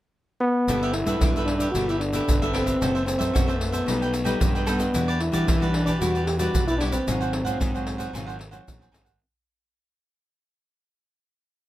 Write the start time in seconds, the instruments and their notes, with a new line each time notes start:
0.40 trombone B3
0.68 fingered electric bass G1, nylon-string guitar G3 B3 E4 A4, cavaquinho D4 G4 B4 E5, pandeiro, shaker, surdo
0.83 cavaquinho G4 B4 E5, pandeiro, shaker
0.93 trombone E4, muted cavaquinho stroke, pandeiro
1.06 fingered electric bass G2, nylon-string guitar B3 E4 A4, cavaquinho G4 B4 E5, pandeiro, shaker, surdo
1.20 fingered electric bass G2, nylon-string guitar D3, cavaquinho D4 G4, pandeiro, shaker, surdo
1.24 cavaquinho B4 E5
1.36 nylon-string guitar B3 E4 A4, cavaquinho G4 B4 E5, pandeiro, shaker
1.45 trombone D4, pandeiro
1.58 trombone D4, cavaquinho G4 B4 E5, pandeiro, shaker, surdo
1.71 fingered electric bass G1, nylon-string guitar G3, cavaquinho D4 G4, trombone F#4, pandeiro, shaker, surdo
1.75 nylon-string guitar B3 E4 A4, cavaquinho B4 E5
1.89 trombone E4, cavaquinho G4 B4 E5, pandeiro, shaker
2.00 trombone D4, muted cavaquinho stroke, pandeiro
2.13 nylon-string guitar B3 E4 A4, cavaquinho G4 B4 E5, pandeiro, shaker
2.28 fingered electric bass G1, nylon-string guitar D3, pandeiro, shaker, surdo
2.42 nylon-string guitar B3 E4 A4, cavaquinho G4 B4 E5, pandeiro, shaker, surdo
2.52 trombone C4, cavaquinho D4 G4 B4 E5, pandeiro
2.66 nylon-string guitar E3 A3 C4, cavaquinho G4 B4 E5, pandeiro, shaker, surdo
2.81 fingered electric bass F#1, nylon-string guitar F#2, cavaquinho F#4 A4 C5 E5, pandeiro, shaker, surdo
2.95 cavaquinho A4 C5 E5, pandeiro, shaker
3.06 trombone C4, muted cavaquinho stroke, pandeiro, shaker
3.19 fingered electric bass F#2, nylon-string guitar E3 A3 C4, cavaquinho A4 C5 E5, pandeiro, shaker, surdo
3.33 nylon-string guitar F#2, fingered electric bass F#2, cavaquinho F#4 A4 C5 E5, pandeiro, shaker, surdo
3.46 nylon-string guitar E3 A3 C4, cavaquinho A4 C5 E5, pandeiro, shaker
3.59 trombone A3, pandeiro
3.72 trombone B3, cavaquinho A4 C5 E5, pandeiro, shaker, surdo
3.86 fingered electric bass B1, nylon-string guitar B2 G3 A3 D#4, cavaquinho A4 B4 D#5 G5, pandeiro, shaker, surdo
4.02 cavaquinho B4 D#5 G5, pandeiro, shaker
4.14 muted cavaquinho stroke, pandeiro, shaker
4.24 nylon-string guitar G3 A3 D#4, cavaquinho B4 D#5 G5, pandeiro, shaker
4.40 fingered electric bass G2, nylon-string guitar B2, pandeiro, shaker, surdo
4.55 cavaquinho B4 D#5 G5, pandeiro, shaker, surdo
4.66 nylon-string guitar G3 A3 D#4, trombone B3, cavaquinho A4 B4 D#5 G5, pandeiro, shaker
4.78 cavaquinho B4 D#5 G5, pandeiro, shaker, surdo
4.94 fingered electric bass E2, nylon-string guitar E3 G3 D4 F#4, cavaquinho E4 G4 B4 D5, pandeiro, shaker, surdo
5.08 cavaquinho G4 B4 D5, pandeiro, shaker
5.20 trombone E4, muted cavaquinho stroke, pandeiro
5.32 fingered electric bass E3, nylon-string guitar G3 D4 F#4, cavaquinho G4 B4 D5, pandeiro, shaker, surdo
5.47 nylon-string guitar B2, fingered electric bass E3, cavaquinho E4 G4 B4 D5, pandeiro, shaker, surdo
5.60 nylon-string guitar G3 D4 F#4, cavaquinho G4 B4 D5, pandeiro, shaker
5.72 trombone D4, pandeiro
5.85 trombone D4, cavaquinho G4 B4 D5, pandeiro, shaker, surdo
6.00 fingered electric bass E2, nylon-string guitar E3 G3 D4 F#4, cavaquinho E4 G4 B4 D5, trombone F#4, pandeiro, shaker, surdo
6.15 cavaquinho G4 B4 D5, pandeiro, shaker
6.25 trombone G4, muted cavaquinho stroke, pandeiro
6.38 nylon-string guitar G3 D4 F#4, trombone F#4, cavaquinho G4 B4 D5, pandeiro, shaker
6.54 fingered electric bass B1, nylon-string guitar B2, pandeiro, shaker, surdo
6.68 trombone E4, cavaquinho G4 B4 D5, pandeiro, shaker, surdo
6.78 nylon-string guitar G3 D4 F#4, trombone D4, cavaquinho E4 G4 B4 D5, pandeiro, surdo
6.92 trombone C4, cavaquinho G4 B4 D5, pandeiro, shaker, surdo
7.07 fingered electric bass G#1, nylon-string guitar G#2 F#3 C4 F4, cavaquinho D#4 G#4 C5 F#5, pandeiro, shaker, surdo
7.21 cavaquinho G#4 C5 F#5, pandeiro, shaker
7.33 muted cavaquinho stroke, pandeiro
7.44 fingered electric bass G#2, nylon-string guitar F#3 C4 F4, cavaquinho G#4 C5 F#5, pandeiro, shaker, surdo
7.60 fingered electric bass G#2, nylon-string guitar D#3, cavaquinho D#4 G#4 C5 F#5, pandeiro, shaker, surdo
7.74 nylon-string guitar F#3 C4 F4, cavaquinho G#4 C5 F#5, pandeiro, shaker
7.87 pandeiro
7.98 cavaquinho G#4 C5 F#5, pandeiro, shaker, surdo
8.13 fingered electric bass G#1, nylon-string guitar G#2 F#3 C4 F4, cavaquinho D#4 G#4 C5 F#5, pandeiro, shaker, surdo
8.26 cavaquinho G#4 C5 F#5, pandeiro, shaker
8.39 muted cavaquinho stroke, pandeiro
8.51 nylon-string guitar F#3 C4 F4, cavaquinho G#4 C5 F#5, pandeiro, shaker
8.67 fingered electric bass A#1, nylon-string guitar D#3, pandeiro, shaker, surdo
8.80 cavaquinho G#4 C5 F#5, pandeiro, shaker, surdo
8.92 fingered electric bass G#1, nylon-string guitar F#3 C4 F4, cavaquinho D#4 G#4 C5 F#5, pandeiro, shaker, surdo
9.05 cavaquinho G#4 C5 F#5, pandeiro, shaker, surdo